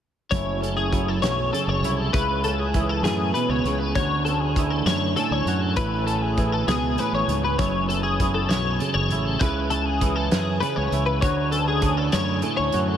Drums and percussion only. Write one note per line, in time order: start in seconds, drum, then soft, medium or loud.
0.32 kick medium
0.32 closed hi-hat medium
0.63 closed hi-hat medium
0.93 kick medium
0.93 closed hi-hat medium
1.23 snare medium
1.23 closed hi-hat medium
1.54 closed hi-hat medium
1.84 closed hi-hat medium
2.14 kick medium
2.14 closed hi-hat medium
2.44 closed hi-hat medium
2.74 kick medium
2.74 closed hi-hat medium
3.05 snare loud
3.05 closed hi-hat medium
3.35 closed hi-hat medium
3.65 closed hi-hat soft
3.95 kick loud
3.95 closed hi-hat medium
4.26 closed hi-hat soft
4.56 kick medium
4.56 closed hi-hat medium
4.87 snare loud
4.87 closed hi-hat medium
5.17 closed hi-hat soft
5.47 closed hi-hat medium
5.76 kick loud
5.76 closed hi-hat medium
6.08 closed hi-hat medium
6.37 kick medium
6.37 closed hi-hat medium
6.68 snare medium
6.68 closed hi-hat medium
6.98 closed hi-hat medium
7.29 closed hi-hat medium
7.59 kick medium
7.59 closed hi-hat medium
7.90 closed hi-hat medium
8.20 kick medium
8.20 closed hi-hat medium
8.50 snare medium
8.50 closed hi-hat medium
8.80 closed hi-hat medium
9.10 closed hi-hat medium
9.40 kick loud
9.40 closed hi-hat medium
9.70 closed hi-hat soft
10.01 kick medium
10.01 closed hi-hat medium
10.31 snare loud
10.31 closed hi-hat medium
10.62 closed hi-hat medium
10.92 closed hi-hat medium
11.22 kick medium
11.22 closed hi-hat medium
11.52 closed hi-hat medium
11.82 kick medium
11.82 closed hi-hat medium
12.12 snare loud
12.12 closed hi-hat medium
12.42 closed hi-hat medium
12.72 closed hi-hat medium